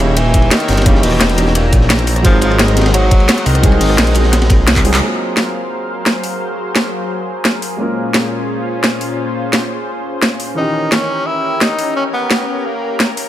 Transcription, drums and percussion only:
0.17 closed hi-hat, ride
0.34 kick, closed hi-hat, ride
0.42 ride
0.51 snare, closed hi-hat, ride
0.60 cross-stick, closed hi-hat
0.68 snare, open hi-hat, ride
0.72 snare, ride
0.77 cross-stick, snare, closed hi-hat, ride
0.82 snare, ride
0.86 kick, closed hi-hat, ride
0.95 cross-stick, snare
1.03 closed hi-hat, open hi-hat
1.12 cross-stick
1.20 snare, closed hi-hat, ride
1.29 snare, closed hi-hat
1.38 closed hi-hat, ride
1.47 snare
1.55 closed hi-hat, ride
1.73 kick, closed hi-hat, ride
1.81 snare
1.90 snare, closed hi-hat, ride
1.99 closed hi-hat
2.07 open hi-hat, ride
2.16 cross-stick, closed hi-hat
2.25 kick, closed hi-hat, ride
2.34 cross-stick
2.41 closed hi-hat, ride
2.51 cross-stick, ride
2.59 snare, closed hi-hat, ride
2.68 snare, closed hi-hat
2.77 snare, closed hi-hat, ride
2.81 snare, ride
2.86 snare, ride
2.94 closed hi-hat, ride
3.11 kick, closed hi-hat, ride
3.20 ride
3.28 snare, closed hi-hat, ride
3.38 cross-stick, closed hi-hat
3.46 open hi-hat, ride
3.55 cross-stick, closed hi-hat
3.63 kick, closed hi-hat, ride
3.72 cross-stick, ride
3.81 closed hi-hat, open hi-hat
3.90 cross-stick
3.98 snare, closed hi-hat, ride
4.06 snare, closed hi-hat
4.14 closed hi-hat, ride
4.24 snare
4.33 snare, closed hi-hat, ride
4.42 snare, ride
4.49 kick, snare, closed hi-hat, ride
4.67 snare, closed hi-hat, ride
4.76 kick, clap, closed hi-hat, ride
4.85 open hi-hat
4.94 clap, closed hi-hat, ride
5.37 snare
6.06 snare
6.24 open hi-hat
6.76 snare
7.45 snare
7.62 open hi-hat
8.14 snare
8.84 snare
9.01 open hi-hat
9.53 snare
10.22 snare
10.40 open hi-hat
10.92 snare
11.61 snare
11.79 open hi-hat
12.31 snare
13.00 snare
13.17 open hi-hat

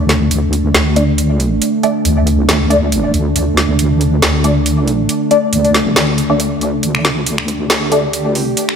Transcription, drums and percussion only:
0.09 snare, closed hi-hat
0.31 closed hi-hat
0.53 closed hi-hat
0.75 snare, closed hi-hat
0.96 closed hi-hat
1.18 closed hi-hat
1.40 closed hi-hat
1.62 closed hi-hat
1.83 closed hi-hat
2.05 closed hi-hat
2.27 closed hi-hat
2.49 snare, closed hi-hat
2.71 closed hi-hat
2.92 closed hi-hat
3.14 closed hi-hat
3.36 closed hi-hat
3.57 snare, closed hi-hat
3.79 closed hi-hat
4.01 closed hi-hat
4.22 snare, closed hi-hat
4.44 closed hi-hat
4.66 closed hi-hat
4.88 closed hi-hat
5.09 closed hi-hat
5.31 closed hi-hat
5.53 closed hi-hat
5.65 closed hi-hat
5.74 snare, closed hi-hat
5.96 snare, closed hi-hat
6.18 closed hi-hat
6.40 closed hi-hat
6.61 closed hi-hat
6.83 closed hi-hat
6.95 finger snap
7.05 finger snap, snare, closed hi-hat
7.26 closed hi-hat
7.38 finger snap
7.48 closed hi-hat
7.70 snare, closed hi-hat
7.92 closed hi-hat
8.13 closed hi-hat
8.35 open hi-hat
8.57 closed hi-hat
8.69 finger snap

